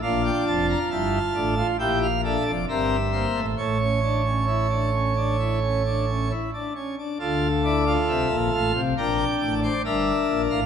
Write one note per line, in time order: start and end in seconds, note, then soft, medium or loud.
0.02 0.30 A#1 medium
0.02 0.30 A#2 medium
0.02 0.79 D4 medium
0.02 1.54 F4 medium
0.02 0.22 F5 medium
0.25 0.44 G5 medium
0.47 0.75 F1 medium
0.47 0.75 F2 medium
0.47 0.66 A5 medium
0.70 0.89 A#5 medium
0.91 1.18 G1 medium
0.91 1.19 G2 medium
0.91 1.19 E4 medium
0.91 1.67 A5 medium
1.35 1.63 A1 medium
1.35 1.62 A2 medium
1.35 1.54 D4 medium
1.58 1.77 F4 medium
1.79 2.37 A#1 medium
1.79 2.37 A#2 medium
1.79 2.07 E4 medium
1.79 2.07 G4 medium
1.79 1.99 G5 medium
2.02 2.21 F5 medium
2.24 2.51 D4 medium
2.24 2.51 A4 medium
2.24 2.43 E5 medium
2.46 2.65 F1 medium
2.46 2.65 F2 medium
2.46 2.65 D5 medium
2.69 3.26 G1 medium
2.69 3.26 G2 medium
2.69 2.96 C4 medium
2.69 2.96 A#4 medium
2.69 3.45 E5 medium
3.12 3.41 A#3 medium
3.12 3.40 C5 medium
3.35 3.54 A1 medium
3.35 3.54 A2 medium
3.58 6.32 A1 medium
3.58 6.32 A2 medium
3.58 3.77 A3 medium
3.58 6.32 C#5 medium
3.80 4.00 C#4 medium
4.03 4.22 D4 medium
4.25 4.45 C#4 medium
4.47 4.67 E4 medium
4.70 4.90 D4 medium
4.93 5.13 C#4 medium
5.16 5.36 D4 soft
5.40 5.59 E4 medium
5.63 5.82 C#4 soft
5.86 6.05 D4 medium
6.09 6.28 C#4 soft
6.31 6.50 E4 medium
6.54 6.73 D4 medium
6.76 6.95 C#4 medium
6.99 7.18 D4 medium
7.20 7.97 D2 medium
7.20 7.97 D3 medium
7.20 7.48 F4 medium
7.20 8.72 A4 medium
7.64 7.84 E4 medium
7.64 7.92 D5 medium
7.87 8.81 F4 medium
8.08 8.28 C2 medium
8.08 8.28 C3 medium
8.08 8.36 E5 medium
8.30 8.50 A#1 medium
8.30 8.50 A#2 medium
8.53 8.72 A1 medium
8.53 8.72 A2 medium
8.53 8.80 F5 medium
8.75 8.94 C2 medium
8.75 8.94 C3 medium
8.97 9.24 A#1 medium
8.97 9.25 A#2 medium
8.97 9.73 D4 medium
8.97 9.24 A#4 medium
8.97 9.54 G5 medium
9.41 9.68 A1 medium
9.41 9.68 A2 medium
9.41 9.60 D5 medium
9.63 9.82 C5 medium
9.63 9.82 D5 medium
9.85 10.12 G1 medium
9.85 10.12 G2 medium
9.85 10.60 D4 medium
9.85 10.60 A#4 medium
9.85 10.41 E5 medium
10.28 10.47 A#1 medium
10.28 10.47 A#2 medium
10.50 10.66 A1 medium
10.50 10.66 A2 medium
10.50 10.66 F5 medium